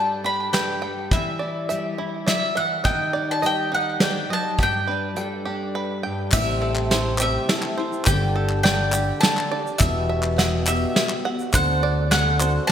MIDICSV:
0, 0, Header, 1, 8, 480
1, 0, Start_track
1, 0, Key_signature, 1, "major"
1, 0, Tempo, 579710
1, 916, Time_signature, 3, 2, 24, 8
1, 10531, End_track
2, 0, Start_track
2, 0, Title_t, "Mandolin"
2, 0, Program_c, 0, 25
2, 0, Note_on_c, 0, 81, 74
2, 210, Note_off_c, 0, 81, 0
2, 213, Note_on_c, 0, 83, 74
2, 436, Note_off_c, 0, 83, 0
2, 440, Note_on_c, 0, 79, 74
2, 932, Note_off_c, 0, 79, 0
2, 935, Note_on_c, 0, 76, 69
2, 1373, Note_off_c, 0, 76, 0
2, 1888, Note_on_c, 0, 76, 76
2, 2106, Note_off_c, 0, 76, 0
2, 2127, Note_on_c, 0, 78, 74
2, 2346, Note_off_c, 0, 78, 0
2, 2359, Note_on_c, 0, 79, 93
2, 2729, Note_off_c, 0, 79, 0
2, 2742, Note_on_c, 0, 81, 76
2, 2853, Note_off_c, 0, 81, 0
2, 2866, Note_on_c, 0, 79, 86
2, 3076, Note_off_c, 0, 79, 0
2, 3101, Note_on_c, 0, 78, 72
2, 3336, Note_off_c, 0, 78, 0
2, 3339, Note_on_c, 0, 79, 76
2, 3575, Note_off_c, 0, 79, 0
2, 3586, Note_on_c, 0, 81, 84
2, 3819, Note_off_c, 0, 81, 0
2, 3831, Note_on_c, 0, 79, 84
2, 4741, Note_off_c, 0, 79, 0
2, 5240, Note_on_c, 0, 76, 105
2, 5924, Note_off_c, 0, 76, 0
2, 5974, Note_on_c, 0, 76, 90
2, 6411, Note_off_c, 0, 76, 0
2, 6673, Note_on_c, 0, 79, 95
2, 7139, Note_off_c, 0, 79, 0
2, 7149, Note_on_c, 0, 79, 88
2, 7619, Note_off_c, 0, 79, 0
2, 7622, Note_on_c, 0, 81, 93
2, 7962, Note_off_c, 0, 81, 0
2, 8101, Note_on_c, 0, 76, 93
2, 8828, Note_off_c, 0, 76, 0
2, 8838, Note_on_c, 0, 76, 71
2, 9281, Note_off_c, 0, 76, 0
2, 9561, Note_on_c, 0, 78, 92
2, 10018, Note_off_c, 0, 78, 0
2, 10028, Note_on_c, 0, 78, 89
2, 10490, Note_off_c, 0, 78, 0
2, 10493, Note_on_c, 0, 81, 92
2, 10531, Note_off_c, 0, 81, 0
2, 10531, End_track
3, 0, Start_track
3, 0, Title_t, "Five-string banjo"
3, 0, Program_c, 1, 105
3, 0, Note_on_c, 1, 67, 65
3, 0, Note_on_c, 1, 71, 64
3, 0, Note_on_c, 1, 79, 72
3, 192, Note_off_c, 1, 67, 0
3, 202, Note_on_c, 1, 67, 58
3, 433, Note_off_c, 1, 71, 0
3, 443, Note_on_c, 1, 71, 68
3, 668, Note_off_c, 1, 79, 0
3, 678, Note_on_c, 1, 79, 66
3, 917, Note_off_c, 1, 79, 0
3, 919, Note_off_c, 1, 67, 0
3, 920, Note_off_c, 1, 71, 0
3, 923, Note_on_c, 1, 64, 68
3, 1154, Note_on_c, 1, 74, 62
3, 1400, Note_on_c, 1, 76, 75
3, 1633, Note_off_c, 1, 64, 0
3, 1643, Note_on_c, 1, 64, 64
3, 1866, Note_off_c, 1, 74, 0
3, 1876, Note_on_c, 1, 74, 68
3, 2106, Note_off_c, 1, 76, 0
3, 2116, Note_on_c, 1, 76, 70
3, 2347, Note_off_c, 1, 64, 0
3, 2351, Note_on_c, 1, 63, 74
3, 2356, Note_off_c, 1, 74, 0
3, 2356, Note_off_c, 1, 76, 0
3, 2595, Note_on_c, 1, 74, 69
3, 2834, Note_on_c, 1, 75, 76
3, 3068, Note_off_c, 1, 63, 0
3, 3078, Note_on_c, 1, 63, 63
3, 3309, Note_off_c, 1, 74, 0
3, 3318, Note_on_c, 1, 74, 69
3, 3554, Note_off_c, 1, 75, 0
3, 3563, Note_on_c, 1, 75, 70
3, 3798, Note_off_c, 1, 63, 0
3, 3798, Note_off_c, 1, 74, 0
3, 3801, Note_off_c, 1, 75, 0
3, 3801, Note_on_c, 1, 67, 64
3, 4037, Note_on_c, 1, 71, 62
3, 4278, Note_on_c, 1, 79, 70
3, 4507, Note_off_c, 1, 67, 0
3, 4517, Note_on_c, 1, 67, 59
3, 4752, Note_off_c, 1, 71, 0
3, 4762, Note_on_c, 1, 71, 72
3, 4986, Note_off_c, 1, 79, 0
3, 4996, Note_on_c, 1, 79, 70
3, 5231, Note_off_c, 1, 67, 0
3, 5236, Note_off_c, 1, 79, 0
3, 5239, Note_off_c, 1, 71, 0
3, 5240, Note_on_c, 1, 67, 79
3, 5479, Note_on_c, 1, 69, 71
3, 5723, Note_on_c, 1, 72, 77
3, 5951, Note_off_c, 1, 67, 0
3, 5961, Note_on_c, 1, 67, 71
3, 6191, Note_off_c, 1, 69, 0
3, 6201, Note_on_c, 1, 69, 75
3, 6429, Note_off_c, 1, 72, 0
3, 6438, Note_on_c, 1, 72, 71
3, 6670, Note_off_c, 1, 67, 0
3, 6676, Note_off_c, 1, 72, 0
3, 6677, Note_off_c, 1, 69, 0
3, 6680, Note_on_c, 1, 67, 77
3, 6919, Note_on_c, 1, 69, 74
3, 7155, Note_on_c, 1, 74, 77
3, 7384, Note_off_c, 1, 67, 0
3, 7394, Note_on_c, 1, 67, 73
3, 7630, Note_off_c, 1, 69, 0
3, 7640, Note_on_c, 1, 69, 72
3, 7869, Note_off_c, 1, 74, 0
3, 7879, Note_on_c, 1, 74, 73
3, 8112, Note_off_c, 1, 67, 0
3, 8115, Note_off_c, 1, 74, 0
3, 8116, Note_off_c, 1, 69, 0
3, 8358, Note_on_c, 1, 76, 77
3, 8597, Note_on_c, 1, 78, 84
3, 8837, Note_on_c, 1, 67, 68
3, 9066, Note_off_c, 1, 76, 0
3, 9076, Note_on_c, 1, 76, 70
3, 9307, Note_off_c, 1, 78, 0
3, 9317, Note_on_c, 1, 78, 79
3, 9553, Note_off_c, 1, 76, 0
3, 9554, Note_off_c, 1, 67, 0
3, 9554, Note_off_c, 1, 78, 0
3, 9554, Note_on_c, 1, 72, 78
3, 9795, Note_on_c, 1, 74, 77
3, 10030, Note_on_c, 1, 78, 80
3, 10264, Note_off_c, 1, 72, 0
3, 10274, Note_on_c, 1, 72, 68
3, 10500, Note_off_c, 1, 74, 0
3, 10531, Note_off_c, 1, 72, 0
3, 10531, Note_off_c, 1, 78, 0
3, 10531, End_track
4, 0, Start_track
4, 0, Title_t, "Steel-string acoustic guitar"
4, 0, Program_c, 2, 25
4, 5229, Note_on_c, 2, 57, 64
4, 5238, Note_on_c, 2, 60, 70
4, 5242, Note_on_c, 2, 64, 67
4, 5246, Note_on_c, 2, 67, 70
4, 5708, Note_off_c, 2, 57, 0
4, 5712, Note_on_c, 2, 57, 55
4, 5713, Note_off_c, 2, 60, 0
4, 5719, Note_off_c, 2, 64, 0
4, 5723, Note_on_c, 2, 60, 57
4, 5733, Note_on_c, 2, 64, 59
4, 5735, Note_off_c, 2, 67, 0
4, 5738, Note_on_c, 2, 67, 61
4, 6181, Note_off_c, 2, 57, 0
4, 6190, Note_on_c, 2, 57, 58
4, 6195, Note_off_c, 2, 60, 0
4, 6196, Note_off_c, 2, 64, 0
4, 6205, Note_on_c, 2, 60, 67
4, 6206, Note_on_c, 2, 64, 61
4, 6211, Note_off_c, 2, 67, 0
4, 6214, Note_on_c, 2, 67, 57
4, 6423, Note_off_c, 2, 67, 0
4, 6431, Note_off_c, 2, 64, 0
4, 6432, Note_off_c, 2, 57, 0
4, 6433, Note_on_c, 2, 67, 48
4, 6440, Note_off_c, 2, 60, 0
4, 6441, Note_on_c, 2, 64, 39
4, 6451, Note_on_c, 2, 60, 36
4, 6670, Note_on_c, 2, 43, 62
4, 6673, Note_on_c, 2, 50, 67
4, 6674, Note_off_c, 2, 67, 0
4, 6676, Note_off_c, 2, 60, 0
4, 6677, Note_off_c, 2, 64, 0
4, 6679, Note_on_c, 2, 55, 78
4, 6679, Note_on_c, 2, 62, 69
4, 6682, Note_on_c, 2, 69, 70
4, 6683, Note_on_c, 2, 67, 75
4, 7149, Note_off_c, 2, 55, 0
4, 7150, Note_off_c, 2, 62, 0
4, 7151, Note_off_c, 2, 43, 0
4, 7152, Note_on_c, 2, 55, 56
4, 7153, Note_off_c, 2, 50, 0
4, 7158, Note_off_c, 2, 69, 0
4, 7160, Note_on_c, 2, 62, 62
4, 7165, Note_off_c, 2, 67, 0
4, 7168, Note_on_c, 2, 67, 55
4, 7175, Note_on_c, 2, 69, 65
4, 7380, Note_off_c, 2, 69, 0
4, 7387, Note_off_c, 2, 67, 0
4, 7390, Note_on_c, 2, 69, 42
4, 7393, Note_off_c, 2, 55, 0
4, 7394, Note_off_c, 2, 62, 0
4, 7397, Note_on_c, 2, 67, 44
4, 7404, Note_on_c, 2, 62, 36
4, 7410, Note_on_c, 2, 55, 41
4, 7611, Note_off_c, 2, 55, 0
4, 7620, Note_off_c, 2, 62, 0
4, 7621, Note_on_c, 2, 55, 59
4, 7625, Note_off_c, 2, 67, 0
4, 7630, Note_on_c, 2, 62, 58
4, 7631, Note_off_c, 2, 69, 0
4, 7635, Note_on_c, 2, 67, 61
4, 7642, Note_on_c, 2, 69, 62
4, 7861, Note_off_c, 2, 69, 0
4, 7865, Note_off_c, 2, 67, 0
4, 7867, Note_off_c, 2, 55, 0
4, 7871, Note_off_c, 2, 62, 0
4, 7871, Note_on_c, 2, 69, 45
4, 7875, Note_on_c, 2, 67, 40
4, 7885, Note_on_c, 2, 62, 43
4, 7890, Note_on_c, 2, 55, 36
4, 8101, Note_off_c, 2, 55, 0
4, 8102, Note_on_c, 2, 52, 70
4, 8110, Note_off_c, 2, 62, 0
4, 8110, Note_off_c, 2, 67, 0
4, 8111, Note_off_c, 2, 69, 0
4, 8111, Note_on_c, 2, 55, 70
4, 8113, Note_on_c, 2, 59, 67
4, 8113, Note_on_c, 2, 66, 69
4, 8120, Note_on_c, 2, 67, 82
4, 8581, Note_off_c, 2, 55, 0
4, 8585, Note_off_c, 2, 59, 0
4, 8587, Note_off_c, 2, 52, 0
4, 8591, Note_on_c, 2, 55, 55
4, 8595, Note_on_c, 2, 59, 57
4, 8596, Note_off_c, 2, 67, 0
4, 8601, Note_off_c, 2, 66, 0
4, 8604, Note_on_c, 2, 66, 60
4, 8608, Note_on_c, 2, 67, 72
4, 8825, Note_off_c, 2, 67, 0
4, 8831, Note_off_c, 2, 55, 0
4, 8833, Note_off_c, 2, 59, 0
4, 8835, Note_on_c, 2, 67, 45
4, 8837, Note_off_c, 2, 66, 0
4, 8848, Note_on_c, 2, 66, 43
4, 8856, Note_on_c, 2, 59, 36
4, 9056, Note_off_c, 2, 59, 0
4, 9058, Note_on_c, 2, 55, 57
4, 9066, Note_on_c, 2, 59, 54
4, 9067, Note_off_c, 2, 66, 0
4, 9073, Note_off_c, 2, 67, 0
4, 9077, Note_on_c, 2, 66, 67
4, 9082, Note_on_c, 2, 67, 59
4, 9296, Note_off_c, 2, 67, 0
4, 9304, Note_off_c, 2, 55, 0
4, 9306, Note_on_c, 2, 67, 42
4, 9308, Note_off_c, 2, 59, 0
4, 9308, Note_off_c, 2, 66, 0
4, 9318, Note_on_c, 2, 66, 43
4, 9325, Note_on_c, 2, 59, 36
4, 9541, Note_on_c, 2, 50, 70
4, 9546, Note_off_c, 2, 66, 0
4, 9546, Note_on_c, 2, 57, 67
4, 9548, Note_off_c, 2, 67, 0
4, 9549, Note_off_c, 2, 59, 0
4, 9552, Note_on_c, 2, 60, 74
4, 9556, Note_on_c, 2, 66, 70
4, 9556, Note_on_c, 2, 69, 79
4, 10017, Note_off_c, 2, 57, 0
4, 10021, Note_on_c, 2, 57, 50
4, 10025, Note_off_c, 2, 66, 0
4, 10026, Note_off_c, 2, 50, 0
4, 10029, Note_off_c, 2, 60, 0
4, 10032, Note_on_c, 2, 60, 59
4, 10035, Note_on_c, 2, 66, 56
4, 10042, Note_off_c, 2, 69, 0
4, 10045, Note_on_c, 2, 69, 56
4, 10254, Note_off_c, 2, 69, 0
4, 10264, Note_on_c, 2, 69, 47
4, 10265, Note_off_c, 2, 66, 0
4, 10266, Note_off_c, 2, 57, 0
4, 10272, Note_off_c, 2, 60, 0
4, 10275, Note_on_c, 2, 66, 45
4, 10284, Note_on_c, 2, 60, 41
4, 10501, Note_on_c, 2, 57, 55
4, 10502, Note_off_c, 2, 60, 0
4, 10508, Note_off_c, 2, 69, 0
4, 10509, Note_off_c, 2, 66, 0
4, 10531, Note_off_c, 2, 57, 0
4, 10531, End_track
5, 0, Start_track
5, 0, Title_t, "Steel-string acoustic guitar"
5, 0, Program_c, 3, 25
5, 0, Note_on_c, 3, 43, 65
5, 0, Note_on_c, 3, 55, 52
5, 0, Note_on_c, 3, 62, 45
5, 0, Note_on_c, 3, 69, 54
5, 194, Note_off_c, 3, 62, 0
5, 198, Note_on_c, 3, 62, 48
5, 430, Note_off_c, 3, 55, 0
5, 433, Note_on_c, 3, 55, 52
5, 671, Note_off_c, 3, 69, 0
5, 680, Note_on_c, 3, 69, 48
5, 889, Note_off_c, 3, 69, 0
5, 915, Note_off_c, 3, 43, 0
5, 926, Note_on_c, 3, 52, 65
5, 1170, Note_off_c, 3, 62, 0
5, 1174, Note_on_c, 3, 64, 49
5, 1411, Note_off_c, 3, 55, 0
5, 1414, Note_on_c, 3, 55, 53
5, 1415, Note_on_c, 3, 67, 62
5, 1645, Note_off_c, 3, 64, 0
5, 1662, Note_on_c, 3, 64, 49
5, 1878, Note_off_c, 3, 52, 0
5, 1882, Note_on_c, 3, 54, 55
5, 2119, Note_off_c, 3, 54, 0
5, 2130, Note_on_c, 3, 52, 53
5, 2341, Note_off_c, 3, 64, 0
5, 2357, Note_off_c, 3, 52, 0
5, 2361, Note_on_c, 3, 51, 63
5, 2612, Note_on_c, 3, 63, 54
5, 2830, Note_off_c, 3, 55, 0
5, 2834, Note_on_c, 3, 55, 55
5, 2837, Note_off_c, 3, 67, 0
5, 2841, Note_on_c, 3, 67, 57
5, 3076, Note_off_c, 3, 63, 0
5, 3086, Note_on_c, 3, 63, 48
5, 3306, Note_off_c, 3, 51, 0
5, 3316, Note_on_c, 3, 51, 56
5, 3546, Note_off_c, 3, 51, 0
5, 3549, Note_on_c, 3, 54, 52
5, 3773, Note_off_c, 3, 63, 0
5, 3794, Note_off_c, 3, 54, 0
5, 3800, Note_on_c, 3, 43, 60
5, 4044, Note_on_c, 3, 62, 50
5, 4263, Note_off_c, 3, 55, 0
5, 4273, Note_off_c, 3, 67, 0
5, 4273, Note_on_c, 3, 55, 57
5, 4277, Note_on_c, 3, 69, 60
5, 4515, Note_off_c, 3, 62, 0
5, 4525, Note_on_c, 3, 62, 50
5, 4998, Note_off_c, 3, 43, 0
5, 5010, Note_on_c, 3, 43, 51
5, 5208, Note_off_c, 3, 69, 0
5, 5241, Note_off_c, 3, 62, 0
5, 5243, Note_off_c, 3, 43, 0
5, 6672, Note_off_c, 3, 55, 0
5, 10531, End_track
6, 0, Start_track
6, 0, Title_t, "Trombone"
6, 0, Program_c, 4, 57
6, 5237, Note_on_c, 4, 48, 82
6, 5923, Note_off_c, 4, 48, 0
6, 5955, Note_on_c, 4, 48, 83
6, 6401, Note_off_c, 4, 48, 0
6, 6687, Note_on_c, 4, 50, 77
6, 7127, Note_off_c, 4, 50, 0
6, 7156, Note_on_c, 4, 50, 77
6, 7601, Note_off_c, 4, 50, 0
6, 7640, Note_on_c, 4, 50, 86
6, 7971, Note_off_c, 4, 50, 0
6, 8115, Note_on_c, 4, 47, 85
6, 8800, Note_off_c, 4, 47, 0
6, 8832, Note_on_c, 4, 47, 73
6, 9278, Note_off_c, 4, 47, 0
6, 9544, Note_on_c, 4, 50, 82
6, 9994, Note_off_c, 4, 50, 0
6, 10014, Note_on_c, 4, 50, 70
6, 10469, Note_off_c, 4, 50, 0
6, 10479, Note_on_c, 4, 54, 81
6, 10531, Note_off_c, 4, 54, 0
6, 10531, End_track
7, 0, Start_track
7, 0, Title_t, "Fingered electric bass"
7, 0, Program_c, 5, 33
7, 5242, Note_on_c, 5, 33, 94
7, 6101, Note_off_c, 5, 33, 0
7, 6682, Note_on_c, 5, 31, 92
7, 7539, Note_off_c, 5, 31, 0
7, 8119, Note_on_c, 5, 28, 90
7, 8977, Note_off_c, 5, 28, 0
7, 9552, Note_on_c, 5, 38, 95
7, 10414, Note_off_c, 5, 38, 0
7, 10531, End_track
8, 0, Start_track
8, 0, Title_t, "Drums"
8, 446, Note_on_c, 9, 38, 73
8, 446, Note_on_c, 9, 42, 48
8, 529, Note_off_c, 9, 38, 0
8, 529, Note_off_c, 9, 42, 0
8, 923, Note_on_c, 9, 36, 84
8, 924, Note_on_c, 9, 42, 50
8, 1006, Note_off_c, 9, 36, 0
8, 1007, Note_off_c, 9, 42, 0
8, 1405, Note_on_c, 9, 42, 52
8, 1488, Note_off_c, 9, 42, 0
8, 1883, Note_on_c, 9, 38, 66
8, 1883, Note_on_c, 9, 42, 51
8, 1966, Note_off_c, 9, 38, 0
8, 1966, Note_off_c, 9, 42, 0
8, 2356, Note_on_c, 9, 42, 51
8, 2360, Note_on_c, 9, 36, 81
8, 2439, Note_off_c, 9, 42, 0
8, 2443, Note_off_c, 9, 36, 0
8, 2840, Note_on_c, 9, 42, 46
8, 2922, Note_off_c, 9, 42, 0
8, 3314, Note_on_c, 9, 38, 73
8, 3314, Note_on_c, 9, 42, 48
8, 3397, Note_off_c, 9, 38, 0
8, 3397, Note_off_c, 9, 42, 0
8, 3792, Note_on_c, 9, 42, 43
8, 3798, Note_on_c, 9, 36, 82
8, 3875, Note_off_c, 9, 42, 0
8, 3881, Note_off_c, 9, 36, 0
8, 4275, Note_on_c, 9, 42, 50
8, 4358, Note_off_c, 9, 42, 0
8, 5229, Note_on_c, 9, 39, 87
8, 5237, Note_on_c, 9, 82, 84
8, 5238, Note_on_c, 9, 49, 87
8, 5241, Note_on_c, 9, 36, 106
8, 5311, Note_off_c, 9, 39, 0
8, 5320, Note_off_c, 9, 49, 0
8, 5320, Note_off_c, 9, 82, 0
8, 5324, Note_off_c, 9, 36, 0
8, 5592, Note_on_c, 9, 39, 71
8, 5675, Note_off_c, 9, 39, 0
8, 5721, Note_on_c, 9, 38, 77
8, 5721, Note_on_c, 9, 42, 60
8, 5804, Note_off_c, 9, 38, 0
8, 5804, Note_off_c, 9, 42, 0
8, 5947, Note_on_c, 9, 39, 88
8, 5958, Note_on_c, 9, 82, 91
8, 6029, Note_off_c, 9, 39, 0
8, 6041, Note_off_c, 9, 82, 0
8, 6203, Note_on_c, 9, 38, 79
8, 6203, Note_on_c, 9, 42, 57
8, 6286, Note_off_c, 9, 38, 0
8, 6286, Note_off_c, 9, 42, 0
8, 6311, Note_on_c, 9, 39, 70
8, 6394, Note_off_c, 9, 39, 0
8, 6565, Note_on_c, 9, 82, 30
8, 6647, Note_off_c, 9, 82, 0
8, 6662, Note_on_c, 9, 39, 86
8, 6680, Note_on_c, 9, 82, 100
8, 6682, Note_on_c, 9, 36, 94
8, 6684, Note_on_c, 9, 42, 53
8, 6744, Note_off_c, 9, 39, 0
8, 6763, Note_off_c, 9, 82, 0
8, 6764, Note_off_c, 9, 36, 0
8, 6766, Note_off_c, 9, 42, 0
8, 7032, Note_on_c, 9, 39, 65
8, 7115, Note_off_c, 9, 39, 0
8, 7165, Note_on_c, 9, 38, 76
8, 7165, Note_on_c, 9, 42, 50
8, 7248, Note_off_c, 9, 38, 0
8, 7248, Note_off_c, 9, 42, 0
8, 7388, Note_on_c, 9, 39, 85
8, 7393, Note_on_c, 9, 82, 88
8, 7471, Note_off_c, 9, 39, 0
8, 7476, Note_off_c, 9, 82, 0
8, 7645, Note_on_c, 9, 38, 83
8, 7645, Note_on_c, 9, 42, 56
8, 7727, Note_off_c, 9, 38, 0
8, 7727, Note_off_c, 9, 42, 0
8, 7760, Note_on_c, 9, 39, 67
8, 7842, Note_off_c, 9, 39, 0
8, 8003, Note_on_c, 9, 82, 26
8, 8086, Note_off_c, 9, 82, 0
8, 8111, Note_on_c, 9, 39, 97
8, 8117, Note_on_c, 9, 82, 88
8, 8120, Note_on_c, 9, 36, 100
8, 8124, Note_on_c, 9, 42, 56
8, 8194, Note_off_c, 9, 39, 0
8, 8199, Note_off_c, 9, 82, 0
8, 8202, Note_off_c, 9, 36, 0
8, 8206, Note_off_c, 9, 42, 0
8, 8467, Note_on_c, 9, 39, 75
8, 8550, Note_off_c, 9, 39, 0
8, 8601, Note_on_c, 9, 38, 74
8, 8601, Note_on_c, 9, 42, 58
8, 8683, Note_off_c, 9, 38, 0
8, 8683, Note_off_c, 9, 42, 0
8, 8830, Note_on_c, 9, 39, 90
8, 8837, Note_on_c, 9, 82, 98
8, 8913, Note_off_c, 9, 39, 0
8, 8919, Note_off_c, 9, 82, 0
8, 9076, Note_on_c, 9, 38, 78
8, 9076, Note_on_c, 9, 42, 61
8, 9159, Note_off_c, 9, 38, 0
8, 9159, Note_off_c, 9, 42, 0
8, 9185, Note_on_c, 9, 39, 78
8, 9267, Note_off_c, 9, 39, 0
8, 9431, Note_on_c, 9, 82, 31
8, 9514, Note_off_c, 9, 82, 0
8, 9550, Note_on_c, 9, 39, 100
8, 9551, Note_on_c, 9, 82, 100
8, 9553, Note_on_c, 9, 42, 60
8, 9554, Note_on_c, 9, 36, 104
8, 9633, Note_off_c, 9, 39, 0
8, 9634, Note_off_c, 9, 82, 0
8, 9636, Note_off_c, 9, 42, 0
8, 9637, Note_off_c, 9, 36, 0
8, 10032, Note_on_c, 9, 38, 77
8, 10032, Note_on_c, 9, 39, 27
8, 10032, Note_on_c, 9, 42, 54
8, 10035, Note_on_c, 9, 82, 30
8, 10115, Note_off_c, 9, 38, 0
8, 10115, Note_off_c, 9, 39, 0
8, 10115, Note_off_c, 9, 42, 0
8, 10117, Note_off_c, 9, 82, 0
8, 10270, Note_on_c, 9, 39, 94
8, 10271, Note_on_c, 9, 82, 88
8, 10353, Note_off_c, 9, 39, 0
8, 10353, Note_off_c, 9, 82, 0
8, 10531, End_track
0, 0, End_of_file